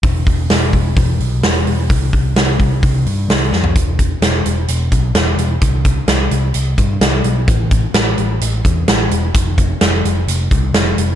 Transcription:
<<
  \new Staff \with { instrumentName = "Picked electric bass" } { \clef bass \time 4/4 \key e \phrygian \tempo 4 = 129 e,,4 e,,8 e,,8 e,,8 b,,8 e,,8 e,,8 | c,4 c,8 c,8 c,8 g,8 c,8 f,8 | e,,4 e,,8 e,,8 e,,8 b,,8 e,,8 e,,8 | c,4 c,8 c,8 c,8 g,8 c,8 b,,8 |
a,,4 a,,8 a,,8 a,,8 e,8 a,,8 e,,8 | f,,4 f,,8 f,,8 f,,8 c,8 f,,8 f,,8 | }
  \new DrumStaff \with { instrumentName = "Drums" } \drummode { \time 4/4 <hho bd>8 <hho bd>8 <hho sn>8 <hho bd>8 <hho bd>8 hho8 <hho sn>8 hho8 | <hho bd>8 <hho bd>8 <hho sn>8 <hho bd>8 <hho bd>8 hho8 <hho sn>8 sn16 tomfh16 | <hh bd>8 <hh bd>8 <hh sn>8 hh8 hh8 <hh bd>8 <hh sn>8 hh8 | <hh bd>8 <hh bd>8 <hh sn>8 hh8 hh8 <hh bd>8 <hh sn>8 hh8 |
<hh bd>8 <hh bd>8 <hh sn>8 hh8 hh8 <hh bd>8 <hh sn>8 hh8 | <hh bd>8 <hh bd>8 <hh sn>8 hh8 hh8 <hh bd>8 <hh sn>8 hh8 | }
>>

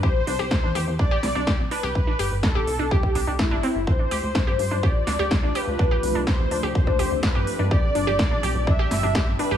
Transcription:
<<
  \new Staff \with { instrumentName = "Analog synth lead" } { \time 4/4 \key d \dorian \tempo 4 = 125 c''2 d''4. b'8~ | b'4 a'4 g'4 e'4 | c''2 d''4. b'8~ | b'4 c''4 c''4 b'4 |
d''2 e''4. b'8 | }
  \new Staff \with { instrumentName = "Synth arpeggio sound" } { \time 4/4 \key d \dorian g'16 r16 d'16 g'16 r16 d'16 g'16 r16 d'16 g'16 r16 d'16 g'16 r16 d'16 g'16 | r16 d'16 g'16 r16 d'16 g'16 r16 d'16 g'16 r16 d'16 d'16 a16 d'16 c'16 r16 | r16 d'16 g'16 r16 d'16 g'16 r16 d'16 g'16 r16 d'16 g'16 r16 d'16 g'16 r16 | d'16 g'16 r16 d'16 g'16 r16 d'16 g'16 r16 d'16 g'16 r16 d'16 g'16 r16 d'16 |
g'16 r16 d'16 g'16 r16 d'16 g'16 r16 d'16 g'16 r16 d'16 g'16 r16 d'16 g'16 | }
  \new Staff \with { instrumentName = "Ambient pad" } { \time 4/4 \key d \dorian << { r1 | r1 | f'1 | g'1 |
g'1 | } \\ { r1 | r1 | <c f a d'>1~ | <c f a d'>1 |
<b, d g d'>1 | } >> }
  \new Staff \with { instrumentName = "Analog synth bass" } { \clef bass \time 4/4 \key d \dorian r8 c,16 c,16 r16 e,16 e,16 e,16 r8 c,16 c,16 r16 c,16 r16 c,16 | r8 g,,16 g,,16 r16 c,16 c,16 c,16 r8 c,16 c,16 r16 g,,16 r16 g,,16 | r8 d,16 d,16 r16 g,16 g,16 g,16 r8 d,16 d,16 r16 d,16 r16 d,16 | r8 c,16 c,16 r16 d,16 d,16 d,16 r8 d,16 d,16 r16 g,16 r16 g,16 |
r8 g,,16 g,,16 r16 b,,16 b,,16 b,,16 r8 g,,16 g,,16 r16 g,,16 r16 g,,16 | }
  \new DrumStaff \with { instrumentName = "Drums" } \drummode { \time 4/4 bd8 hho8 <bd sn>8 hho8 bd8 <hho sn>8 <bd sn>8 hho8 | bd8 hho8 <bd sn>8 hho8 bd16 bd16 hho8 <bd sn>8 hho8 | bd8 hho8 <bd sn>8 hho8 bd8 <hho sn>8 <bd sn>8 hho8 | bd8 hho8 <bd sn>8 hho8 bd16 bd16 hho8 <bd sn>8 hho8 |
bd8 hho8 <bd sn>8 hho8 bd8 <hho sn>8 <bd sn>8 hho8 | }
>>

